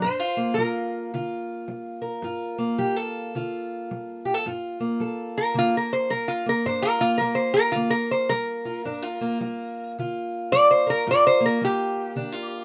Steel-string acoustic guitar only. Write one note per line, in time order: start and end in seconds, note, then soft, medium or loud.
0.04 0.55 G2 medium
0.04 0.20 D4 medium
0.20 0.57 F4 soft
0.37 2.57 A#3 medium
0.58 1.09 G3 medium
0.58 1.14 F4 medium
1.14 1.65 D3 medium
1.14 2.24 F4 medium
1.68 2.20 G3 medium
2.02 2.78 A#4 medium
2.22 2.74 G2 medium
2.22 3.35 F4 medium
2.58 4.79 A#3 medium
2.78 3.30 G3 medium
2.78 2.96 G4 medium
2.96 4.24 A4 medium
3.35 3.86 D3 medium
3.35 4.43 F4 medium
3.91 4.42 G3 medium
4.25 4.34 G4 medium
4.34 4.45 A4 medium
4.46 4.97 G2 medium
4.46 6.65 F4 medium
4.80 5.55 A#3 medium
5.00 5.51 G3 medium
5.00 6.69 A4 medium
5.54 6.06 D3 medium
5.54 6.46 A#3 medium
6.11 6.62 G3 medium
6.46 7.00 A#3 medium
6.66 7.17 G2 medium
6.66 6.83 D4 medium
6.83 8.64 F4 medium
7.01 7.21 A#3 medium
7.21 7.72 G3 medium
7.21 7.75 A#3 medium
7.75 8.27 D3 medium
7.75 9.21 A#3 medium
8.31 8.82 G3 medium
8.65 8.85 F4 medium
8.85 9.37 G2 medium
8.85 9.02 D4 medium
9.02 9.40 F4 medium
9.21 11.40 A#3 medium
9.41 9.92 G3 medium
9.41 9.99 F4 medium
9.99 10.49 D3 medium
9.99 11.06 F4 medium
10.52 11.03 G3 medium
10.87 12.64 A#4 medium
11.07 11.58 G2 medium
11.07 11.61 F4 medium
11.40 12.64 A#3 medium
11.61 12.12 G3 medium
11.61 12.16 F4 medium
12.16 12.64 D3 medium
12.16 12.32 D4 medium
12.32 12.64 F4 medium